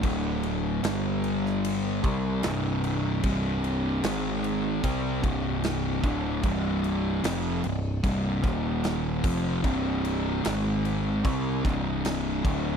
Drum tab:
CC |x-x-x-x-x-x-x-x-|x-x-x-x-x-x-x-x-|x-x-x-x-x-x-x-x-|x-x-x-x-x-x-x-x-|
SD |----o--o----o---|----o-------o---|----o-----o-o---|----o-----o-o---|
BD |o---------o-----|o-------o-o---o-|o-------o-o---o-|o-------o-o---o-|